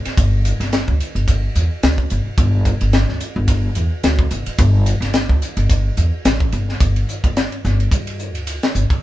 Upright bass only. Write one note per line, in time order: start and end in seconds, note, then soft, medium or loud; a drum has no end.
0.06 muted upright bass stroke soft
0.18 0.52 G1 medium
0.60 0.82 G1 medium
0.88 0.98 D2 medium
1.15 1.47 G1 medium
1.56 1.68 E2 medium
1.83 2.05 D2 medium
2.12 2.24 G1 medium
2.27 muted upright bass stroke soft
2.38 2.73 G1 loud
2.81 3.04 G1 medium
3.09 3.19 D2 medium
3.36 3.68 G1 medium
3.76 3.89 E2 medium
4.04 4.26 D2 medium
4.31 4.44 G1 medium
4.47 muted upright bass stroke soft
4.59 4.93 G1 loud
5.01 5.23 G1 medium
5.29 5.39 D2 medium
5.57 5.89 G1 medium
5.97 6.10 E2 medium
6.25 6.50 A1 medium
6.53 6.78 G1 medium
6.80 7.03 G1 medium
7.24 7.46 G1 medium
7.65 7.87 G1 medium
7.92 8.35 G2 medium
8.35 8.57 D2 medium
8.75 8.87 G1 medium
8.90 muted upright bass stroke soft